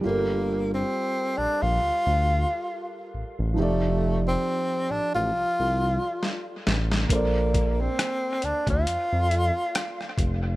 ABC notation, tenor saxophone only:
X:1
M:4/4
L:1/16
Q:"Swing 16ths" 1/4=68
K:Gm
V:1 name="Tenor saxophone"
B,3 C3 D F6- F z2 | A,3 C3 D F6- F z2 | B,3 C3 D F6- F z2 |]